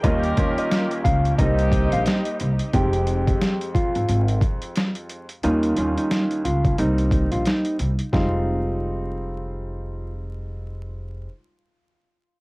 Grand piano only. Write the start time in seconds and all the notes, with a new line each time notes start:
0.04 D#2 G3 A#3 C#4 F4
0.37 D#2 G3 A#3 C#4 F4
1.39 G3 A#3 C4 D#4
2.74 F2 G#3 C4 D#4 G4
5.43 D#2 G3 A#3 C#4 F4
5.77 D#2 G3 A#3 C#4 F4
6.78 G3 A#3 C4 D#4
8.13 G3 G#3 C4 D#4